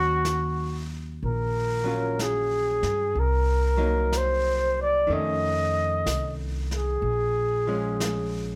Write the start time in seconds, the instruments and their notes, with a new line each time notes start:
Already playing: upright bass D#2, hollow-body jazz guitar D#3 F#3 C#4, muted trumpet F#4
0.25 brush sweep, snare, hi-hat pedal
1.22 upright bass A#1, muted trumpet A#4, brush sweep
1.84 hollow-body jazz guitar F#3 C#4 F4
2.19 muted trumpet G#4, brush sweep, snare, hi-hat pedal
2.83 upright bass G2, snare
3.15 upright bass C2, brush sweep
3.20 muted trumpet A#4
3.77 hollow-body jazz guitar F#3 A#3 D#4
4.13 brush sweep, snare, hi-hat pedal
4.17 muted trumpet C5
4.82 muted trumpet D5
5.07 upright bass F2, hollow-body jazz guitar D#3 A3, brush sweep
5.12 hollow-body jazz guitar C#4, muted trumpet D#5
6.06 upright bass C2, brush sweep, snare, hi-hat pedal
6.71 muted trumpet G#4, snare
7.02 upright bass A#1, brush sweep
7.67 hollow-body jazz guitar F3 G#3 C#4
8.00 brush sweep, snare, hi-hat pedal